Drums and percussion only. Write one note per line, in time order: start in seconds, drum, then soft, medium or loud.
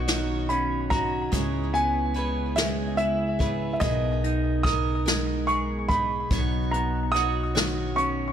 0.08 snare loud
0.08 closed hi-hat medium
0.50 closed hi-hat soft
0.91 kick medium
0.91 closed hi-hat soft
1.33 kick loud
1.33 closed hi-hat medium
1.75 closed hi-hat soft
2.16 closed hi-hat soft
2.57 snare loud
2.57 closed hi-hat medium
2.98 closed hi-hat soft
3.40 kick medium
3.40 closed hi-hat soft
3.81 kick loud
3.81 closed hi-hat medium
4.24 closed hi-hat soft
4.65 kick medium
4.65 snare soft
4.65 closed hi-hat soft
5.07 snare loud
5.07 closed hi-hat medium
5.48 closed hi-hat soft
5.90 kick medium
5.90 closed hi-hat soft
6.31 kick loud
6.31 closed hi-hat medium
6.74 closed hi-hat soft
7.15 snare soft
7.15 closed hi-hat soft
7.56 snare loud
7.56 closed hi-hat medium
7.98 closed hi-hat soft